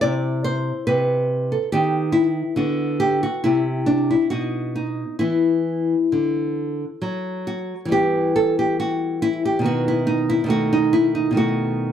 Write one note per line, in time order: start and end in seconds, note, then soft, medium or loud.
0.01 0.71 C3 medium
0.01 1.69 E4 soft
0.01 0.43 D5 loud
0.44 0.86 C5 loud
0.87 1.55 C3 medium
0.87 1.49 B4 medium
1.52 1.72 A4 medium
1.72 2.42 D#3 medium
1.72 2.55 B3 medium
1.72 2.12 G4 medium
2.12 2.55 E4 medium
2.56 3.26 D3 medium
2.56 3.40 B3 soft
2.56 2.99 F#4 medium
3.00 3.22 G4 medium
3.23 3.45 F#4 medium
3.44 4.15 C3 medium
3.44 4.28 C4 medium
3.44 3.86 E4 medium
3.86 4.09 D4 medium
4.11 4.30 E4 medium
4.30 5.03 B2 medium
4.30 4.74 D#4 soft
4.30 4.74 F#4 medium
4.76 5.19 D#4 medium
5.19 5.94 E3 medium
5.19 7.87 B3 soft
5.19 6.97 E4 medium
6.12 6.84 D3 medium
7.02 7.73 F#3 medium
7.47 7.90 F#4 medium
7.85 9.59 E3 medium
7.85 9.61 G3 medium
7.91 9.62 B3 medium
7.91 8.34 G4 medium
8.36 8.58 A4 loud
8.59 8.79 G4 medium
8.80 9.21 F#4 medium
9.22 9.44 E4 loud
9.45 9.65 G4 medium
9.59 10.43 B2 medium
9.59 10.45 D#3 medium
9.64 10.06 B3 medium
9.64 9.87 F#4 medium
9.88 10.09 E4 medium
10.07 10.29 D#4 loud
10.29 10.49 E4 medium
10.44 11.29 B2 medium
10.44 11.31 D#3 medium
10.48 11.33 A3 medium
10.48 10.72 F#4 loud
10.73 10.95 D#4 medium
10.93 11.15 E4 medium
11.15 11.37 D#4 medium
11.31 11.92 B2 medium
11.31 11.92 D#3 medium
11.31 11.92 A3 medium
11.37 11.92 F#4 medium